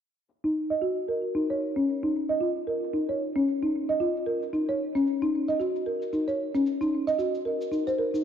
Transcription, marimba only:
0.44 D#4
0.70 D#5
0.82 F#4
1.08 A#4
1.35 D#4
1.50 C#5
1.76 C#4
2.03 D#4
2.29 D#5
2.41 F4
2.67 A#4
2.93 D#4
3.09 C#5
3.36 C#4
3.63 D#4
3.89 D#5
4.00 F4
4.26 A#4
4.53 D#4
4.69 C#5
4.95 C#4
5.22 D#4
5.48 D#5
5.60 F#4
5.86 A#4
6.13 D#4
6.28 C#5
6.55 C#4
6.81 D#4
7.07 D#5
7.19 F#4
7.45 A#4
7.72 D#4
7.87 C5
7.99 A#4
8.14 D#4

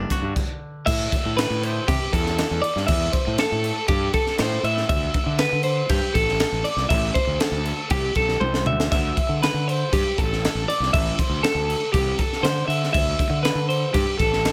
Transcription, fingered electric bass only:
0.22 G2
0.87 A2
1.25 A2
1.50 A2
1.88 C3
2.13 E2
2.51 E2
2.76 G2
2.89 E2
3.27 A2
3.52 A2
3.89 G2
4.39 A2
4.63 A2
4.90 D2
5.26 D3
5.52 D3
5.89 G2
6.15 A1
6.52 A1
6.76 C2
6.90 A1
7.27 D2
7.51 D2
7.91 C2
8.16 B1
8.40 C2
8.66 D2
8.92 D2
9.29 D3
9.54 D3
9.92 G2
10.18 A1
10.55 A1
10.80 C2
10.94 A1
11.29 D2
11.55 D2
11.94 C2
12.43 D3
12.68 D3
12.95 D2
13.30 D3
13.55 D3
13.95 G2
14.19 A1

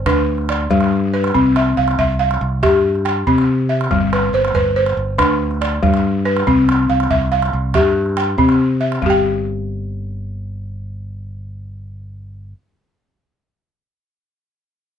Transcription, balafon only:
Already playing: C5
0.06 D4 B4
0.50 D5
0.71 G3
1.14 B4
1.34 C4
1.57 E5
1.77 F5
1.99 E5
2.19 F5
2.63 G4 E5
3.05 G5
3.27 C4
3.69 E5
3.91 G3
4.13 B4
4.34 C5
4.55 B4
4.76 C5
5.18 D4 B4
5.61 D5
5.83 G3
6.25 B4
6.47 C4
6.90 F5
7.11 E5
7.32 F5
7.75 G4 E5
8.17 G5
8.38 C4
8.81 E5
9.02 G3
9.06 G4 G5

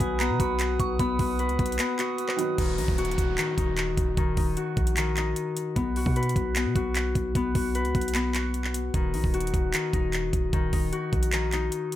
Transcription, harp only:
Already playing: B3 D#4 F#4 B4
0.20 B3
0.40 F#4
1.00 B3
1.19 F#4
1.39 B4
1.79 B3
1.99 F#4
2.58 D#3
2.78 D#4
2.98 F#4
3.38 D#3
3.58 D#4
4.18 D#3
4.37 D#4
4.57 F#4
4.97 D#3
5.17 D#4
5.76 B3
5.97 F#4
6.16 B4
6.56 B3
6.76 F#4
7.36 B3
7.55 F#4
7.75 B4
8.15 B3
8.34 F#4
8.94 D#3
9.14 D#4
9.34 F#4
9.73 D#3
9.93 D#4
10.53 D#3
10.73 D#4
10.92 F#4
11.33 D#3
11.53 D#4

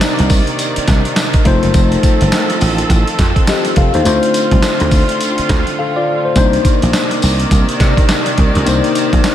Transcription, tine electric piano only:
Already playing: A#3 D4 D#4 C5
1.45 A3 D#4 F4 C5
3.48 G4 D#5
3.77 A4 F5
3.94 D#4 C5
4.04 A3 D4 F4 C5
5.79 A4 F5
5.96 F4 D5
6.25 C5
6.35 A#3 D4 D#4 C5
8.66 A#3 D4 D#4 C5

